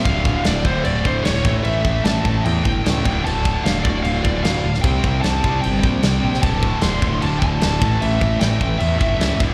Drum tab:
CC |x---x---x---x---|x---x---x---x---|x---x---x---x---|x---x---x---x---|
SD |----o-------o---|----o-------o---|----o-------o--o|----o-------o--o|
BD |o-o---o---o---o-|--o---o---o---o-|--o---o---o-----|o-o---o---o-----|

CC |x---x---x---x---|x---x---x---x---|
SD |----o-------o---|----o-------o---|
BD |o-o---o---o---o-|--o---o---o---o-|